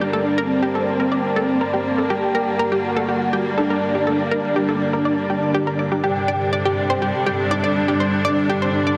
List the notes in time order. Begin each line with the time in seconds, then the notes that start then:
Already playing: G2 D3 G3 A#3 D4 A#4 D5 A5
0.01 G4, shaker
0.13 A4, shaker
0.26 shaker
0.38 C4 A#4
0.51 shaker
0.63 G4, shaker
0.75 A4, shaker
0.87 shaker
1.00 A#4, shaker
1.12 D5, shaker
1.24 shaker
1.36 A4, shaker
1.49 shaker
1.61 A#4, shaker
1.74 G4, shaker
1.85 shaker
1.98 A4, shaker
2.10 G3 G4, shaker
2.23 shaker
2.35 A#4, shaker
2.47 shaker
2.59 A#4, shaker
2.72 G4, shaker
2.84 F#4, shaker
2.97 A4, shaker
3.08 G4, shaker
3.21 shaker
3.33 G4, shaker
3.46 shaker
3.58 D4 A4, shaker
3.70 A#4, shaker
3.82 shaker
3.95 G4, shaker
4.07 A4, shaker
4.19 shaker
4.31 D4 A#4
4.44 shaker
4.56 G4, shaker
4.69 A4, shaker
4.81 shaker
4.93 A#4, shaker
5.05 D5, shaker
5.18 shaker
5.30 G4, shaker
5.42 shaker
5.54 G4, shaker
5.67 A#4, shaker
5.79 D5, shaker
5.92 G4, shaker
6.03 G2 C3 G3 D4 G4, shaker
6.16 shaker
6.26 A4 D5, shaker
6.41 shaker
6.53 D5
6.65 G4, shaker
6.77 G4, shaker
6.90 C5
7.02 G4, shaker
7.14 shaker
7.26 G4
7.39 shaker
7.51 D4 D5
7.64 D5
7.76 shaker
7.81 C6
7.88 G4, shaker
8.00 C5, shaker
8.13 shaker
8.25 D4 D5
8.37 shaker
8.49 G4, shaker
8.62 C5, shaker
8.74 shaker
8.87 D5